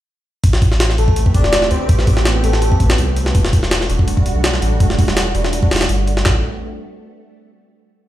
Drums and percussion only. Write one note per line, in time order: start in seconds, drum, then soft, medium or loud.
0.44 kick loud
0.44 open hi-hat medium
0.53 snare medium
0.62 kick medium
0.62 open hi-hat medium
0.72 snare soft
0.80 snare loud
0.80 open hi-hat medium
0.90 snare soft
0.98 open hi-hat medium
1.08 kick loud
1.16 open hi-hat medium
1.26 kick medium
1.34 kick medium
1.34 open hi-hat medium
1.44 snare soft
1.53 snare loud
1.53 open hi-hat medium
1.62 snare medium
1.71 open hi-hat medium
1.89 kick loud
1.89 open hi-hat medium
1.99 snare soft
2.07 kick loud
2.07 open hi-hat medium
2.17 snare medium
2.25 snare loud
2.25 open hi-hat medium
2.44 open hi-hat medium
2.53 snare medium
2.62 open hi-hat medium
2.72 kick medium
2.80 kick medium
2.80 open hi-hat medium
2.90 snare loud
2.98 open hi-hat medium
3.16 open hi-hat medium
3.26 snare medium
3.35 kick loud
3.35 open hi-hat medium
3.45 snare medium
3.53 kick medium
3.53 open hi-hat medium
3.63 snare soft
3.71 snare loud
3.71 open hi-hat medium
3.81 snare soft
3.90 open hi-hat medium
3.99 kick loud
4.08 open hi-hat medium
4.17 kick medium
4.26 open hi-hat medium
4.44 snare loud
4.44 open hi-hat medium
4.54 snare medium
4.62 open hi-hat medium
4.80 kick loud
4.80 open hi-hat medium
4.90 snare soft
4.98 kick medium
4.98 open hi-hat medium
5.08 snare medium
5.17 snare loud
5.17 open hi-hat medium
5.35 open hi-hat medium
5.44 snare medium
5.53 open hi-hat medium
5.63 kick loud
5.71 snare medium
5.71 open hi-hat medium
5.76 snare medium
5.76 open hi-hat medium
5.81 snare loud
5.81 open hi-hat medium
5.89 open hi-hat medium
6.07 open hi-hat medium
6.17 snare medium
6.25 kick loud
6.25 snare loud
6.25 clap medium